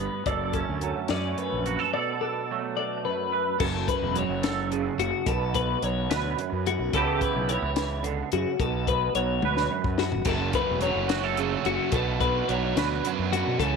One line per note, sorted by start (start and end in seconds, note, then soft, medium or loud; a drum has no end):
0.00 0.25 G2 medium
0.00 0.24 G3 medium
0.00 0.28 B3 soft
0.00 0.54 D4 medium
0.00 0.26 F#4 medium
0.00 0.26 B4 medium
0.26 0.62 F#1 medium
0.26 1.36 F#2 medium
0.26 1.65 A4 medium
0.26 0.54 D5 medium
0.26 kick medium
0.26 closed hi-hat medium
0.53 1.09 C#4 medium
0.53 1.10 A4 medium
0.53 kick medium
0.53 closed hi-hat medium
0.69 0.92 D2 medium
0.81 2.50 F#3 medium
0.81 2.49 A3 medium
0.81 closed hi-hat medium
1.08 1.33 F#2 medium
1.08 1.94 C#4 medium
1.08 1.38 D5 medium
1.08 snare loud
1.08 closed hi-hat medium
1.37 1.93 F#2 medium
1.37 1.93 B4 medium
1.37 closed hi-hat medium
1.52 1.76 A#1 medium
1.66 1.79 F#4 medium
1.66 closed hi-hat medium
1.79 1.93 A4 soft
1.93 3.05 B2 medium
1.93 3.32 A4 medium
1.93 2.21 D5 medium
2.21 2.77 D4 soft
2.21 2.77 A4 medium
2.51 3.58 F#3 medium
2.51 5.28 A3 medium
2.77 3.58 D4 soft
2.77 3.05 D5 medium
3.04 3.58 F#2 medium
3.04 3.61 B4 medium
3.32 3.57 B4 medium
3.60 3.84 F#1 loud
3.60 5.27 F#2 medium
3.60 3.88 A4 medium
3.60 kick loud
3.60 crash loud
3.88 4.17 B4 medium
3.88 kick medium
3.88 closed hi-hat medium
4.02 4.26 E1 medium
4.14 5.23 F#3 medium
4.14 4.72 C#5 medium
4.14 closed hi-hat medium
4.28 4.89 F#1 medium
4.43 5.23 A4 medium
4.43 snare loud
4.43 closed hi-hat medium
4.71 5.24 C#3 medium
4.71 closed hi-hat medium
4.98 5.11 F#1 medium
4.98 5.27 F#4 medium
4.98 closed hi-hat medium
5.26 5.75 B1 medium
5.26 6.38 B2 medium
5.26 5.55 A4 medium
5.26 kick loud
5.26 closed hi-hat loud
5.54 5.83 B4 medium
5.54 kick medium
5.54 closed hi-hat medium
5.82 6.06 B1 medium
5.82 6.91 F#3 medium
5.82 6.38 C#5 medium
5.82 closed hi-hat medium
6.10 6.34 D2 loud
6.10 6.96 B4 medium
6.10 snare loud
6.10 closed hi-hat loud
6.37 6.93 F#2 medium
6.37 closed hi-hat medium
6.52 6.76 F#2 medium
6.66 6.94 F#4 medium
6.66 closed hi-hat medium
6.79 6.91 B1 medium
6.93 7.17 C#2 loud
6.93 7.49 C#3 medium
6.93 7.46 E3 medium
6.93 8.57 B3 medium
6.93 8.58 E4 medium
6.93 8.58 G4 medium
6.93 7.21 A4 medium
6.93 kick loud
6.93 closed hi-hat medium
7.21 7.49 B4 medium
7.21 kick medium
7.21 closed hi-hat medium
7.35 7.59 B1 medium
7.48 7.74 E3 medium
7.48 8.05 C#5 medium
7.48 closed hi-hat medium
7.62 8.22 C#2 medium
7.75 8.04 E3 medium
7.75 snare loud
7.75 closed hi-hat medium
8.03 8.32 D3 medium
8.03 closed hi-hat medium
8.32 8.44 F#2 loud
8.32 8.59 C#3 medium
8.32 8.60 F#4 medium
8.32 closed hi-hat medium
8.59 9.07 B1 medium
8.59 9.71 B2 medium
8.59 8.88 A4 medium
8.59 kick loud
8.59 closed hi-hat medium
8.87 9.15 B4 medium
8.87 kick medium
8.87 closed hi-hat medium
9.15 9.39 B1 medium
9.15 10.81 F#3 medium
9.15 9.71 C#5 medium
9.15 closed hi-hat medium
9.42 9.67 D2 loud
9.42 10.24 B4 medium
9.42 high tom medium
9.57 snare medium
9.70 10.24 F#2 medium
9.84 10.08 F#2 medium
9.84 kick medium
9.98 10.27 F#4 medium
9.98 snare loud
10.12 10.25 G1 medium
10.12 floor tom medium
10.25 10.50 F#1 loud
10.25 11.92 F#2 medium
10.25 10.82 F#2 medium
10.25 10.82 C#3 medium
10.25 10.56 F#3 loud
10.25 10.55 A3 loud
10.25 10.53 C#4 loud
10.25 10.55 A4 medium
10.25 kick loud
10.25 closed hi-hat loud
10.25 splash medium
10.29 10.52 F#4 loud
10.53 10.81 F#3 medium
10.53 10.83 A3 medium
10.53 10.83 C#4 medium
10.53 10.85 F#4 medium
10.53 10.82 B4 medium
10.53 kick medium
10.53 closed hi-hat medium
10.69 10.92 E1 medium
10.81 11.89 F#3 medium
10.81 11.13 F#3 medium
10.81 11.11 A3 medium
10.81 11.10 C#4 medium
10.81 11.38 C#5 medium
10.81 closed hi-hat medium
10.85 11.09 F#4 medium
10.95 11.55 F#1 medium
11.08 11.39 C#4 medium
11.08 11.24 F#4 medium
11.08 11.39 F#4 medium
11.08 snare loud
11.08 closed hi-hat loud
11.13 11.36 F#3 medium
11.13 11.37 A3 medium
11.24 11.93 A4 medium
11.37 11.90 C#3 medium
11.37 11.67 F#3 medium
11.37 11.66 A3 medium
11.37 11.65 C#4 medium
11.37 11.64 F#4 medium
11.37 closed hi-hat medium
11.65 11.77 F#1 medium
11.65 11.92 F#3 medium
11.65 11.93 A3 medium
11.65 11.92 C#4 medium
11.65 11.91 F#4 medium
11.65 11.92 F#4 medium
11.65 closed hi-hat medium
11.92 12.40 B1 loud
11.92 12.48 B2 medium
11.92 13.04 B2 medium
11.92 12.47 F#3 loud
11.92 12.24 B3 loud
11.92 12.22 D4 medium
11.92 12.21 A4 medium
11.92 kick loud
11.92 closed hi-hat medium
11.96 12.20 F#4 loud
12.20 12.49 B3 medium
12.20 12.50 D4 medium
12.20 12.51 F#4 medium
12.20 12.48 B4 medium
12.20 kick medium
12.20 closed hi-hat medium
12.48 12.72 B1 medium
12.48 13.02 F#3 medium
12.48 13.57 F#3 medium
12.48 12.78 B3 medium
12.48 12.77 D4 medium
12.48 12.74 F#4 medium
12.48 13.04 C#5 medium
12.48 closed hi-hat medium
12.76 13.00 D2 medium
12.76 13.04 B3 medium
12.76 13.05 D4 medium
12.76 13.06 F#4 medium
12.76 13.57 B4 medium
12.76 snare loud
12.76 closed hi-hat medium
13.04 13.60 F#2 medium
13.04 13.58 F#3 medium
13.04 13.34 B3 medium
13.04 13.33 D4 medium
13.04 13.31 F#4 medium
13.04 closed hi-hat medium
13.19 13.42 F#2 medium
13.32 13.60 B3 medium
13.32 13.59 D4 medium
13.32 13.58 F#4 medium
13.32 13.59 F#4 medium
13.32 closed hi-hat medium
13.48 13.59 B2 medium
13.60 13.76 C#2 loud
13.60 13.76 C#3 medium
13.60 13.76 E3 loud
13.60 13.76 G#3 loud
13.60 13.76 A4 medium
13.60 kick loud
13.60 closed hi-hat medium
13.64 13.76 C#4 medium